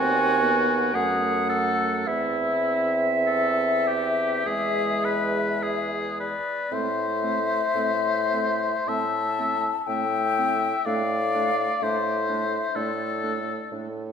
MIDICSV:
0, 0, Header, 1, 6, 480
1, 0, Start_track
1, 0, Key_signature, 0, "minor"
1, 0, Tempo, 1058201
1, 431, Tempo, 1132075
1, 910, Time_signature, 4, 2, 24, 8
1, 911, Tempo, 1192843
1, 1871, Tempo, 1153846
1, 2351, Tempo, 1102941
1, 2831, Tempo, 1032702
1, 3311, Tempo, 1123596
1, 3791, Tempo, 991736
1, 4751, Tempo, 949367
1, 6397, End_track
2, 0, Start_track
2, 0, Title_t, "Flute"
2, 0, Program_c, 0, 73
2, 0, Note_on_c, 0, 80, 116
2, 433, Note_on_c, 0, 78, 90
2, 440, Note_off_c, 0, 80, 0
2, 908, Note_off_c, 0, 78, 0
2, 911, Note_on_c, 0, 76, 93
2, 2475, Note_off_c, 0, 76, 0
2, 2594, Note_on_c, 0, 74, 87
2, 2830, Note_on_c, 0, 76, 107
2, 2836, Note_off_c, 0, 74, 0
2, 3787, Note_off_c, 0, 76, 0
2, 3789, Note_on_c, 0, 81, 102
2, 4268, Note_on_c, 0, 79, 105
2, 4276, Note_off_c, 0, 81, 0
2, 4744, Note_off_c, 0, 79, 0
2, 4747, Note_on_c, 0, 77, 107
2, 5237, Note_on_c, 0, 76, 87
2, 5245, Note_off_c, 0, 77, 0
2, 5712, Note_on_c, 0, 74, 81
2, 5720, Note_off_c, 0, 76, 0
2, 6195, Note_off_c, 0, 74, 0
2, 6397, End_track
3, 0, Start_track
3, 0, Title_t, "Oboe"
3, 0, Program_c, 1, 68
3, 0, Note_on_c, 1, 66, 101
3, 429, Note_on_c, 1, 68, 77
3, 436, Note_off_c, 1, 66, 0
3, 658, Note_off_c, 1, 68, 0
3, 661, Note_on_c, 1, 69, 82
3, 908, Note_on_c, 1, 64, 66
3, 914, Note_off_c, 1, 69, 0
3, 1345, Note_off_c, 1, 64, 0
3, 1387, Note_on_c, 1, 69, 76
3, 1631, Note_on_c, 1, 67, 74
3, 1637, Note_off_c, 1, 69, 0
3, 1870, Note_on_c, 1, 68, 84
3, 1876, Note_off_c, 1, 67, 0
3, 2114, Note_on_c, 1, 71, 90
3, 2120, Note_off_c, 1, 68, 0
3, 2355, Note_on_c, 1, 68, 75
3, 2362, Note_off_c, 1, 71, 0
3, 2601, Note_off_c, 1, 68, 0
3, 2604, Note_on_c, 1, 71, 72
3, 2835, Note_on_c, 1, 72, 89
3, 2842, Note_off_c, 1, 71, 0
3, 3792, Note_on_c, 1, 76, 87
3, 3799, Note_off_c, 1, 72, 0
3, 4195, Note_off_c, 1, 76, 0
3, 4277, Note_on_c, 1, 76, 68
3, 4748, Note_on_c, 1, 74, 86
3, 4755, Note_off_c, 1, 76, 0
3, 5240, Note_on_c, 1, 72, 76
3, 5248, Note_off_c, 1, 74, 0
3, 5709, Note_on_c, 1, 69, 71
3, 5716, Note_off_c, 1, 72, 0
3, 6194, Note_off_c, 1, 69, 0
3, 6397, End_track
4, 0, Start_track
4, 0, Title_t, "Clarinet"
4, 0, Program_c, 2, 71
4, 0, Note_on_c, 2, 80, 114
4, 426, Note_on_c, 2, 78, 91
4, 432, Note_off_c, 2, 80, 0
4, 906, Note_on_c, 2, 76, 96
4, 912, Note_off_c, 2, 78, 0
4, 2596, Note_off_c, 2, 76, 0
4, 2826, Note_on_c, 2, 60, 64
4, 2900, Note_off_c, 2, 60, 0
4, 3061, Note_on_c, 2, 60, 57
4, 3135, Note_off_c, 2, 60, 0
4, 3309, Note_on_c, 2, 60, 54
4, 3377, Note_off_c, 2, 60, 0
4, 3550, Note_on_c, 2, 60, 47
4, 3618, Note_off_c, 2, 60, 0
4, 3792, Note_on_c, 2, 60, 57
4, 3869, Note_off_c, 2, 60, 0
4, 4034, Note_on_c, 2, 60, 58
4, 4112, Note_off_c, 2, 60, 0
4, 4274, Note_on_c, 2, 60, 55
4, 4351, Note_off_c, 2, 60, 0
4, 4515, Note_on_c, 2, 60, 65
4, 4592, Note_off_c, 2, 60, 0
4, 4750, Note_on_c, 2, 62, 61
4, 4831, Note_off_c, 2, 62, 0
4, 4991, Note_on_c, 2, 62, 60
4, 5072, Note_off_c, 2, 62, 0
4, 5232, Note_on_c, 2, 62, 60
4, 5313, Note_off_c, 2, 62, 0
4, 5467, Note_on_c, 2, 62, 60
4, 5548, Note_off_c, 2, 62, 0
4, 5703, Note_on_c, 2, 62, 56
4, 5784, Note_off_c, 2, 62, 0
4, 5944, Note_on_c, 2, 62, 59
4, 6025, Note_off_c, 2, 62, 0
4, 6193, Note_on_c, 2, 62, 51
4, 6273, Note_off_c, 2, 62, 0
4, 6397, End_track
5, 0, Start_track
5, 0, Title_t, "French horn"
5, 0, Program_c, 3, 60
5, 0, Note_on_c, 3, 60, 83
5, 190, Note_on_c, 3, 59, 72
5, 197, Note_off_c, 3, 60, 0
5, 431, Note_on_c, 3, 57, 66
5, 437, Note_off_c, 3, 59, 0
5, 908, Note_off_c, 3, 57, 0
5, 910, Note_on_c, 3, 60, 76
5, 1855, Note_off_c, 3, 60, 0
5, 1870, Note_on_c, 3, 56, 77
5, 2668, Note_off_c, 3, 56, 0
5, 2833, Note_on_c, 3, 57, 59
5, 2907, Note_off_c, 3, 57, 0
5, 3068, Note_on_c, 3, 57, 61
5, 3142, Note_off_c, 3, 57, 0
5, 3313, Note_on_c, 3, 57, 64
5, 3382, Note_off_c, 3, 57, 0
5, 3556, Note_on_c, 3, 57, 59
5, 3625, Note_off_c, 3, 57, 0
5, 3797, Note_on_c, 3, 57, 55
5, 3874, Note_off_c, 3, 57, 0
5, 4040, Note_on_c, 3, 57, 50
5, 4117, Note_off_c, 3, 57, 0
5, 4278, Note_on_c, 3, 57, 51
5, 4355, Note_off_c, 3, 57, 0
5, 4517, Note_on_c, 3, 57, 52
5, 4595, Note_off_c, 3, 57, 0
5, 4751, Note_on_c, 3, 57, 74
5, 4832, Note_off_c, 3, 57, 0
5, 4998, Note_on_c, 3, 57, 57
5, 5079, Note_off_c, 3, 57, 0
5, 5234, Note_on_c, 3, 57, 60
5, 5315, Note_off_c, 3, 57, 0
5, 5474, Note_on_c, 3, 57, 62
5, 5555, Note_off_c, 3, 57, 0
5, 5709, Note_on_c, 3, 57, 56
5, 5790, Note_off_c, 3, 57, 0
5, 5950, Note_on_c, 3, 57, 52
5, 6031, Note_off_c, 3, 57, 0
5, 6195, Note_on_c, 3, 57, 49
5, 6276, Note_off_c, 3, 57, 0
5, 6397, End_track
6, 0, Start_track
6, 0, Title_t, "Bassoon"
6, 0, Program_c, 4, 70
6, 0, Note_on_c, 4, 39, 89
6, 424, Note_on_c, 4, 42, 75
6, 431, Note_off_c, 4, 39, 0
6, 903, Note_off_c, 4, 42, 0
6, 905, Note_on_c, 4, 40, 73
6, 1852, Note_off_c, 4, 40, 0
6, 1867, Note_on_c, 4, 40, 71
6, 2666, Note_off_c, 4, 40, 0
6, 2827, Note_on_c, 4, 45, 74
6, 3250, Note_off_c, 4, 45, 0
6, 3307, Note_on_c, 4, 45, 69
6, 3735, Note_off_c, 4, 45, 0
6, 3788, Note_on_c, 4, 45, 70
6, 4215, Note_off_c, 4, 45, 0
6, 4273, Note_on_c, 4, 45, 71
6, 4695, Note_off_c, 4, 45, 0
6, 4749, Note_on_c, 4, 45, 73
6, 5177, Note_off_c, 4, 45, 0
6, 5236, Note_on_c, 4, 45, 76
6, 5650, Note_off_c, 4, 45, 0
6, 5706, Note_on_c, 4, 45, 73
6, 6135, Note_off_c, 4, 45, 0
6, 6194, Note_on_c, 4, 45, 69
6, 6397, Note_off_c, 4, 45, 0
6, 6397, End_track
0, 0, End_of_file